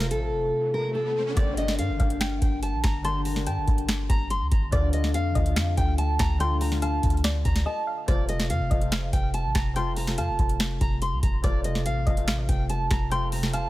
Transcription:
Already playing: F1, riser
0.00 C3 A3 F4, snare
0.11 A1 A4, closed hi-hat
0.32 F1
0.74 A#4
0.95 A4
1.34 G1 D3 A#3 G4 D5, kick, closed hi-hat
1.57 D#5, closed hi-hat
1.68 snare
1.79 G2 F5, closed hi-hat
1.89 G1
1.98 G1 D3 A#3 G4 F5, kick, closed hi-hat
2.08 D3 A#3 G4, closed hi-hat
2.21 G5, finger snap, snare, closed hi-hat
2.42 G1 G5, kick, closed hi-hat
2.63 A5, closed hi-hat
2.73 A#1
2.84 G1 A#5, finger snap, kick, snare, closed hi-hat
3.03 D3 A#3 G4 A5 C6, closed hi-hat
3.25 A#5, open hi-hat
3.34 D3 A#3 G4, snare
3.47 G2 G5 A5, closed hi-hat
3.57 G1
3.68 G1, kick, closed hi-hat
3.78 closed hi-hat
3.88 finger snap, snare, closed hi-hat
4.09 G1 A#5, kick, closed hi-hat
4.30 C6, closed hi-hat
4.41 D2
4.51 G1 A#5, kick, closed hi-hat
4.71 D2 D3 A3 F4 D5, kick, closed hi-hat
4.93 D#5, closed hi-hat
5.04 snare
5.14 F2 F5, closed hi-hat
5.34 D2 D3 A3 F4 D#5, kick, closed hi-hat
5.44 D3 A3 F4, closed hi-hat
5.56 F2 F5, finger snap, snare, closed hi-hat
5.77 D2 G5, kick, closed hi-hat
5.98 A5, closed hi-hat
6.19 D2 A5 A#5, finger snap, kick, snare, closed hi-hat
6.38 D3 A3 F4 G5 C6, closed hi-hat
6.61 A#5, open hi-hat
6.70 D3 A3 F4, snare
6.82 F5 A5, closed hi-hat
7.03 D2, kick, closed hi-hat
7.10 closed hi-hat
7.17 closed hi-hat
7.24 D5, finger snap, snare, closed hi-hat
7.45 D2 A#5, kick, closed hi-hat
7.56 snare, closed hi-hat
7.66 D#5 A5
7.87 F5
8.06 F1 C3 A3 F4 C5 D5, kick, closed hi-hat
8.29 D#5, closed hi-hat
8.40 snare
8.50 F2 F5, closed hi-hat
8.60 F1
8.69 F1 C3 A3 F4 D#5, kick, closed hi-hat
8.80 C3 A3 F4, closed hi-hat
8.92 F5, finger snap, snare, closed hi-hat
9.13 F1 G5, kick, closed hi-hat
9.34 A5, closed hi-hat
9.44 A1
9.55 F1 A5 A#5, finger snap, kick, snare, closed hi-hat
9.74 C3 A3 F4 G5 C6, closed hi-hat
9.96 A#5, open hi-hat
10.06 C3 A3 F4, snare
10.18 F2 F5 A5, closed hi-hat
10.28 F1
10.39 F1, kick, closed hi-hat
10.49 closed hi-hat
10.60 finger snap, snare, closed hi-hat
10.81 F1 A#5, kick, closed hi-hat
11.02 C6, closed hi-hat
11.12 C2
11.23 F1 A#5, kick, closed hi-hat
11.42 F1 C3 A3 F4 D5, kick, closed hi-hat
11.64 D#5, closed hi-hat
11.75 snare
11.86 A1 F5, closed hi-hat
12.05 F1 C3 A3 F4 D#5, kick, closed hi-hat
12.15 C3 A3 F4, closed hi-hat
12.28 A1 F5, finger snap, snare, closed hi-hat
12.49 F1 G5, kick, closed hi-hat
12.70 A5, closed hi-hat
12.91 F1 A5 A#5, finger snap, kick, snare, closed hi-hat
13.10 C3 A3 F4 G5 C6, closed hi-hat
13.32 A#5, open hi-hat
13.41 C3 A3 F4, snare
13.53 F5 A5, closed hi-hat

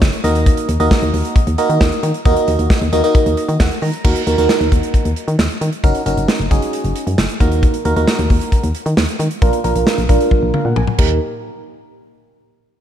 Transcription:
Already playing: C#4 D#4 F#4 A#4 C#5
0.02 F#1, kick, snare
0.13 closed hi-hat
0.24 D#2 A#3 D#4 F#4 A#4 D#5, closed hi-hat
0.35 closed hi-hat
0.46 kick, closed hi-hat
0.57 closed hi-hat
0.69 D#2, closed hi-hat
0.80 D#2 A#3 D#4 F#4 A#4 D#5, closed hi-hat
0.91 kick, snare
1.02 D#2, closed hi-hat
1.14 D#2, open hi-hat
1.25 closed hi-hat
1.36 kick, closed hi-hat
1.47 D#2, closed hi-hat
1.58 A#3 D#4 F#4 A#4 D#5, closed hi-hat
1.70 D#3, closed hi-hat
1.81 D#2, kick, snare
1.92 closed hi-hat
2.03 D#3, closed hi-hat
2.14 closed hi-hat
2.25 D#2 A#3 D#4 F#4 A#4 D#5, kick, closed hi-hat
2.36 closed hi-hat
2.48 D#2, closed hi-hat
2.59 D#2, closed hi-hat
2.70 kick, snare
2.81 D#2, closed hi-hat
2.93 D#2 A#3 D#4 F#4 A#4 D#5, closed hi-hat
3.04 A#3 D#4 F#4 A#4 D#5, closed hi-hat
3.15 kick, closed hi-hat
3.26 D#2, closed hi-hat
3.37 D#5, closed hi-hat
3.49 D#3, closed hi-hat
3.60 D#2 F#5, kick, snare
3.71 closed hi-hat
3.82 D#3 A#5, open hi-hat
3.93 closed hi-hat
4.05 D#2 A#3 D#4 F#4 A#4, kick, crash
4.16 closed hi-hat
4.27 D#2 A#3 D#4 F#4 A#4, closed hi-hat
4.38 D#2 A#3 D#4 F#4 A#4, closed hi-hat
4.49 snare
4.60 D#2, closed hi-hat
4.72 D#2, kick, closed hi-hat
4.83 closed hi-hat
4.94 kick, closed hi-hat
5.05 D#2, closed hi-hat
5.16 closed hi-hat
5.28 D#3, closed hi-hat
5.39 D#2, snare
5.50 closed hi-hat
5.61 D#3, closed hi-hat
5.73 closed hi-hat
5.84 F#1 C#4 D#4 F#4 A#4, kick, closed hi-hat
5.95 closed hi-hat
6.06 F#1 C#4 D#4 F#4 A#4, closed hi-hat
6.17 F#1, closed hi-hat
6.28 snare
6.40 F#1, closed hi-hat
6.51 F#1 C#4 D#4 F#4 G#4, kick, closed hi-hat
6.62 closed hi-hat
6.73 closed hi-hat
6.84 F#1, closed hi-hat
6.96 closed hi-hat
7.07 F#2, closed hi-hat
7.18 F#1, snare
7.29 closed hi-hat
7.40 D#2 A#3 D#4 F#4 A#4, kick, closed hi-hat
7.52 closed hi-hat
7.63 kick, closed hi-hat
7.74 closed hi-hat
7.85 D#2 A#3 D#4 F#4 A#4, closed hi-hat
7.96 D#2 A#3 D#4 F#4 A#4, closed hi-hat
8.08 snare
8.19 D#2, closed hi-hat
8.30 D#2, kick, open hi-hat
8.41 closed hi-hat
8.52 kick, closed hi-hat
8.63 D#2, closed hi-hat
8.75 closed hi-hat
8.86 D#3, closed hi-hat
8.97 D#2, snare
9.08 closed hi-hat
9.20 D#3, closed hi-hat
9.31 closed hi-hat
9.42 A#1 A#3 D4 F4 A#4, kick, closed hi-hat
9.53 closed hi-hat
9.64 A#1 A#3 D4 F4 A#4, closed hi-hat
9.76 A#1, closed hi-hat
9.87 snare
9.98 A#1, closed hi-hat
10.09 A#1 A#3 D4 F4 A#4, kick, closed hi-hat
10.20 closed hi-hat
10.31 kick, high tom
10.43 A#1
10.54 F5, mid tom
10.65 A#2 F#5
10.76 A#1 G#5, mid tom
10.87 mid tom
10.99 D#2 A#3 D#4 G4 A#4, kick, crash

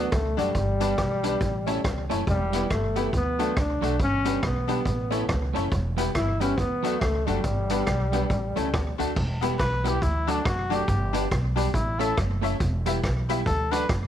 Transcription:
Already playing: B3
0.12 C#2 A3, kick, cross-stick, closed hi-hat
0.37 F#1 F#3 G3 A3 D4 F#4 A4 D5, closed hi-hat
0.55 G1, kick, closed hi-hat
0.80 G3 B3 D4 G4 B4 D5, closed hi-hat
0.98 B1, kick, cross-stick, closed hi-hat
1.23 G3 B3 D4 G4 B4 D5, closed hi-hat
1.41 A1, kick, closed hi-hat
1.67 A3 C#4 E4 A4 C#5, closed hi-hat
1.84 C#2 A4 C#5, kick, cross-stick, closed hi-hat
2.10 F#1 A3 C#4 E4 A4 C#5, closed hi-hat
2.27 E1 G3, kick, closed hi-hat
2.52 G3 B3 E4 G4 B4, closed hi-hat
2.70 G1 A3, kick, cross-stick, closed hi-hat
2.96 G3 B3 E4 G4 B4, closed hi-hat
3.13 D2 B3, kick, closed hi-hat
3.39 F#3 A3 D4 F#4 A4, closed hi-hat
3.57 C#2 D4, kick, cross-stick, closed hi-hat
3.81 B1 F#3 A3 D4 F#4 A4, closed hi-hat
4.00 G1 C#4, kick, closed hi-hat
4.25 G3 B3 D4 G4 B4, closed hi-hat
4.43 B1 B3, kick, cross-stick, closed hi-hat
4.68 G3 B3 D4 G4 B4, closed hi-hat
4.85 A1, kick, closed hi-hat
5.11 A3 C#4 E4 A4 C#5, closed hi-hat
5.29 C#2 A4 C#5, kick, cross-stick, closed hi-hat
5.53 F#1 A3 C#4 E4 A4 C#5, closed hi-hat
5.72 E1, kick, closed hi-hat
5.97 G3 B3 E4 G4 B4, closed hi-hat
6.15 G1 E4, kick, cross-stick, closed hi-hat
6.40 G3 B3 C#4 E4 G4 B4, closed hi-hat
6.58 D2 B3, kick, closed hi-hat
6.83 F#3 A3 D4 F#4 A4, closed hi-hat
7.00 C#2 A3, kick, cross-stick, closed hi-hat
7.26 F#1 F#3 G3 A3 D4 F#4 A4, closed hi-hat
7.44 G1, kick, closed hi-hat
7.70 G3 B3 D4 G4 B4, closed hi-hat
7.87 B1, kick, cross-stick, closed hi-hat
8.12 G3 B3 D4 G4 B4, closed hi-hat
8.30 A1, kick, closed hi-hat
8.56 C#2 A3 C#4 E4 A4, closed hi-hat
8.73 D2 F#4 A4, kick, cross-stick, closed hi-hat
8.98 D2 A3 D4 F#4 A4, closed hi-hat
9.16 E1, kick, crash
9.41 G3 B3 E4 G4 B4, closed hi-hat
9.59 B1 B4, kick, cross-stick, closed hi-hat
9.84 G3 B3 E4 G4 B4, closed hi-hat
10.02 D2 E4, kick, closed hi-hat
10.27 F#3 A3 D4 F#4 A4 D5, closed hi-hat
10.31 D4
10.44 F#1 F#4, muted clean electric guitar stroke, kick, cross-stick, closed hi-hat
10.70 F#3 A3 D4 F#4 A4 D5, closed hi-hat
10.75 G4
10.88 G1, kick, closed hi-hat
11.13 G3 B3 D4 G4 B4 D5, closed hi-hat
11.31 B1, kick, cross-stick, closed hi-hat
11.56 G3 B3 D4 G4 B4 D5, closed hi-hat
11.74 A1 E4, kick, closed hi-hat
11.99 A3 C#4 E4 A4 C#5 E5, closed hi-hat
12.17 F#1 C#5 E5, kick, cross-stick, closed hi-hat
12.41 A3 C#4 E4 A4 C#5 E5, closed hi-hat
12.60 E1, kick, closed hi-hat
12.86 G3 B3 E4 G4 B4 E5, closed hi-hat
13.03 B1, kick, cross-stick, closed hi-hat
13.29 G3 B3 E4 G4 B4 E5, closed hi-hat
13.46 D2 A4, kick, closed hi-hat
13.71 F#3 A3 D4 F#4 A4 B4 D5, closed hi-hat
13.89 F#1, muted clean electric guitar stroke, kick, cross-stick, closed hi-hat

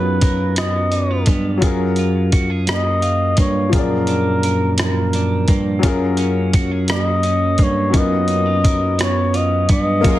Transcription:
Already playing: F#2 F#3 B3 C#4 D#4 F4 G#4 B4
0.21 A#4, kick, closed hi-hat
0.56 B3 D#5, cross-stick, closed hi-hat
0.92 D#4, closed hi-hat
1.11 F4
1.26 G2 B3, kick, closed hi-hat
1.58 F#3 F4
1.62 F#2 F#3 G#4, kick, closed hi-hat
1.67 A#4
1.96 F4, closed hi-hat
2.32 F#4, kick, closed hi-hat
2.50 G#4
2.67 A#3 D#5, cross-stick, closed hi-hat
3.02 F4, closed hi-hat
3.37 G2 A#3 C#5, kick, closed hi-hat
3.69 A#2 F3 F4, kick, closed hi-hat
3.74 F#2 G#4 A#4
3.78 D5
4.07 D4, closed hi-hat
4.43 A#4, closed hi-hat
4.78 F3 A#4, cross-stick, closed hi-hat
5.13 D4, closed hi-hat
5.48 G2 A#3, kick, closed hi-hat
5.79 F#3 C#4
5.83 F#2 F#3 F4 G#4, kick, closed hi-hat
5.88 A#4
6.17 C#4, closed hi-hat
6.53 F#4, kick, closed hi-hat
6.71 G#4
6.88 A#3 D#5, cross-stick, closed hi-hat
7.23 C#4, closed hi-hat
7.58 G2 A#3, kick, closed hi-hat
7.63 C#5
7.90 F#3 C#4 D#4, kick, closed hi-hat
7.95 F#2 B3 F4 A#4 D#5
8.28 D#4, closed hi-hat
8.46 F4
8.64 A#4, kick, closed hi-hat
8.98 B3 C#5, cross-stick, closed hi-hat
9.34 F4 D#5, closed hi-hat
9.69 G2 B3 D#5, kick, closed hi-hat
10.01 F#3 A#3 F4, kick, closed hi-hat
10.05 F#2 A#3 F4 G#4 A#4
10.10 A#4

